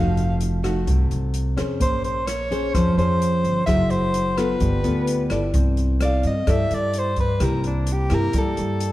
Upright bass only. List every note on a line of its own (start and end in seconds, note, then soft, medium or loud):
0.00 0.83 F1 medium
0.87 1.09 C2 medium
1.11 1.55 C2 medium
1.58 1.79 F2 medium
1.81 2.70 A#1 medium
2.74 2.96 F2 loud
2.97 3.41 F2 medium
3.44 3.66 G1 medium
3.67 4.57 F#1 medium
4.60 4.83 G1 medium
4.84 5.28 D2 medium
5.30 5.52 G1 medium
5.54 6.20 C2 medium
6.24 6.46 G2 medium
6.47 6.69 G2 medium
6.70 7.37 G2 medium
7.41 8.07 C2 medium
8.11 8.33 G2 medium
8.33 8.56 G2 medium
8.58 8.92 G2 medium